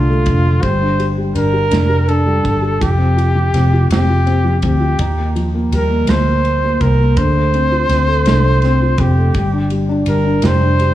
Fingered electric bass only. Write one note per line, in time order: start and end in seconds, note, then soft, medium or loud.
0.00 0.22 C2 medium
0.26 0.61 F1 medium
0.63 1.32 G1 loud
1.35 1.70 G1 medium
1.71 2.40 F1 medium
2.45 2.79 G1 medium
2.81 3.50 F1 loud
3.54 3.88 F1 loud
3.90 4.59 F1 medium
4.63 4.97 D2 medium
4.99 5.68 D#2 loud
5.71 6.05 D#2 loud
6.07 6.76 D2 medium
6.81 7.15 C2 medium
7.17 7.85 D2 loud
7.89 8.23 D2 loud
8.26 8.94 C2 medium
8.98 9.32 F1 medium
9.35 10.03 G1 loud
10.07 10.41 G1 medium
10.43 10.94 F1 medium